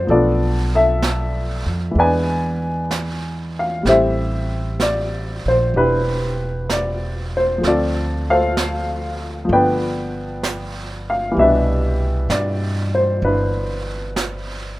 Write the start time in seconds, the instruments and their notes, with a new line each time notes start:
Already playing: upright piano B4 C5 D5 E5
0.07 upright bass B1, upright piano F3 A3 A4 D5, brush sweep
0.11 upright piano B3 D4 F4
0.75 upright piano A4 E5
1.02 brush sweep, snare, hi-hat pedal
1.66 upright bass F2
1.91 upright bass E2, upright piano E3 G#3
1.96 upright piano B3 B4 D5 G#5, brush sweep
2.02 upright piano D4
2.91 brush sweep, snare, hi-hat pedal
3.59 upright piano F5
3.83 upright bass A1, upright piano G3 A3 C4, brush sweep, snare
3.88 upright piano E4 G4 C5 E5
4.80 upright piano D5, brush sweep, snare, hi-hat pedal
5.45 upright bass A#1, upright piano C5
5.74 upright bass E1, upright piano D4 E4 G4 B4, brush sweep
6.70 upright piano D5, brush sweep, snare, hi-hat pedal
7.37 upright piano C5
7.58 upright piano F3 A3
7.63 upright bass D2, upright piano C4 A4, brush sweep, snare
7.67 upright piano F4 D5
8.30 upright piano A4 C5 F5
8.57 brush sweep, snare, hi-hat pedal
9.45 upright piano F3 A3
9.49 upright bass G1, upright piano B3 B4 D5 G5, brush sweep
9.56 upright piano D4
10.43 brush sweep, snare, hi-hat pedal
11.10 upright piano F5
11.31 upright piano E3 G3
11.37 upright bass C2, upright piano B2 G4 B4 E5, brush sweep
11.42 upright piano D4
12.29 upright bass G2, upright piano D5, brush sweep, snare, hi-hat pedal
12.95 upright piano C5
13.22 upright bass G1, upright piano D4 E4 B4, brush sweep
14.16 brush sweep, snare, hi-hat pedal